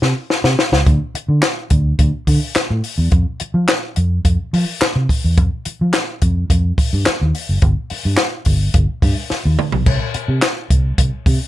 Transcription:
0.02 0.12 C3 medium
0.02 snare medium
0.30 snare medium
0.44 0.55 C3 medium
0.44 snare medium
0.59 snare loud
0.72 0.83 C#2 medium
0.72 snare medium
0.86 0.97 D2 loud
0.86 kick loud
0.86 closed hi-hat medium
1.15 muted fingered electric bass stroke soft
1.15 closed hi-hat medium
1.29 1.39 D3 medium
1.42 snare loud
1.42 clap loud
1.42 closed hi-hat medium
1.70 1.92 D2 medium
1.70 kick medium
1.70 closed hi-hat medium
1.99 2.10 D2 medium
1.99 kick medium
1.99 closed hi-hat medium
2.27 2.38 D3 medium
2.27 kick medium
2.27 open hi-hat medium
2.56 muted fingered electric bass stroke soft
2.56 snare loud
2.56 clap medium
2.56 closed hi-hat medium
2.70 2.81 A2 medium
2.84 open hi-hat medium
2.98 3.08 E2 medium
3.12 3.23 F2 medium
3.12 kick loud
3.12 closed hi-hat medium
3.40 muted fingered electric bass stroke soft
3.40 closed hi-hat medium
3.54 3.65 F3 medium
3.68 snare loud
3.68 clap loud
3.68 closed hi-hat medium
3.96 4.18 F2 medium
3.96 closed hi-hat medium
4.25 4.36 F2 medium
4.25 kick medium
4.25 closed hi-hat medium
4.53 4.64 F3 loud
4.53 open hi-hat medium
4.81 muted fingered electric bass stroke soft
4.81 snare loud
4.81 clap medium
4.81 closed hi-hat medium
4.96 5.06 C3 medium
5.09 kick medium
5.09 open hi-hat medium
5.24 5.38 E2 medium
5.38 5.48 F2 loud
5.38 kick loud
5.38 closed hi-hat medium
5.65 muted fingered electric bass stroke soft
5.65 closed hi-hat medium
5.81 5.91 F3 medium
5.93 snare loud
5.93 clap loud
5.93 closed hi-hat medium
6.22 6.43 F2 medium
6.22 kick medium
6.22 closed hi-hat medium
6.50 6.71 F2 medium
6.50 kick loud
6.50 closed hi-hat medium
6.78 kick loud
6.78 open hi-hat medium
6.93 7.03 G2 medium
7.06 muted fingered electric bass stroke soft
7.06 snare loud
7.06 clap medium
7.06 closed hi-hat loud
7.21 7.31 D#2 medium
7.35 open hi-hat medium
7.49 7.59 F#1 medium
7.62 7.73 G1 loud
7.62 kick loud
7.62 closed hi-hat medium
7.90 muted fingered electric bass stroke soft
7.90 open hi-hat medium
8.05 8.15 G2 medium
8.17 snare loud
8.17 clap loud
8.17 closed hi-hat medium
8.45 8.67 G1 medium
8.45 kick medium
8.45 open hi-hat medium
8.74 8.85 G1 medium
8.74 kick loud
8.74 closed hi-hat loud
9.02 9.13 G2 loud
9.02 kick medium
9.02 open hi-hat medium
9.30 muted fingered electric bass stroke soft
9.30 snare medium
9.45 9.55 D#2 medium
9.59 mid tom medium
9.72 9.83 B1 medium
9.72 floor tom medium
9.86 9.97 C2 medium
9.86 kick loud
9.86 crash medium
10.14 muted fingered electric bass stroke soft
10.14 closed hi-hat medium
10.28 10.39 C3 medium
10.42 snare loud
10.42 clap loud
10.42 closed hi-hat medium
10.70 10.91 C2 medium
10.70 kick loud
10.70 closed hi-hat medium
10.98 11.09 C2 medium
10.98 kick loud
10.98 closed hi-hat loud
11.26 11.37 C3 loud
11.26 kick medium
11.26 open hi-hat medium

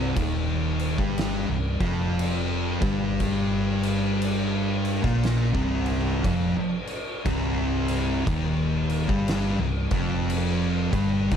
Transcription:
0.00 0.12 C1 loud
0.00 0.15 C2 medium
0.00 0.15 C3 loud
0.16 0.94 D#1 medium
0.16 0.97 D#2 loud
0.16 0.98 D#3 loud
0.16 kick loud
0.16 crash medium
0.79 crash medium
0.98 1.45 G1 medium
0.98 1.47 G2 medium
0.98 1.47 G3 medium
0.98 kick loud
1.18 snare loud
1.18 crash medium
1.49 1.78 C1 medium
1.49 1.80 C2 medium
1.80 2.77 F1 medium
1.80 2.83 F2 medium
1.80 2.83 F3 loud
1.80 kick loud
1.80 crash medium
2.19 crash medium
2.82 4.99 G1 medium
2.82 5.03 G2 medium
2.82 5.03 G3 medium
2.82 kick loud
2.82 crash medium
3.20 kick medium
3.20 crash medium
3.83 crash medium
4.22 crash medium
4.85 crash medium
5.04 5.51 A#1 medium
5.04 5.52 A#2 medium
5.04 5.52 A#3 medium
5.04 kick loud
5.04 snare soft
5.23 snare loud
5.23 crash medium
5.54 6.20 C1 loud
5.54 6.23 C2 loud
5.54 6.23 C3 loud
5.54 kick loud
5.86 crash medium
6.23 6.53 F1 medium
6.23 6.53 F2 medium
6.23 6.54 F3 loud
6.23 kick loud
6.23 crash medium
6.87 crash medium
7.25 8.23 C1 loud
7.25 8.25 C2 medium
7.25 8.26 C3 loud
7.25 kick loud
7.25 crash medium
7.88 crash medium
8.26 9.05 D#1 loud
8.26 9.07 D#2 medium
8.26 9.08 D#3 loud
8.26 kick loud
8.26 crash medium
8.90 crash medium
9.08 9.56 G1 loud
9.08 9.57 G2 medium
9.08 9.58 G3 medium
9.08 kick loud
9.28 snare loud
9.28 crash medium
9.59 9.88 C1 medium
9.59 9.91 C2 medium
9.91 10.89 F1 loud
9.91 10.91 F2 loud
9.91 10.92 F3 loud
9.91 kick loud
9.91 crash medium
10.30 crash medium
10.93 11.29 G1 loud
10.93 11.31 G2 medium
10.93 11.31 G3 loud
10.93 kick loud
10.93 crash medium
11.31 11.37 D#1 medium
11.31 11.37 D#2 medium
11.31 11.37 D#3 loud
11.31 kick loud
11.31 crash medium

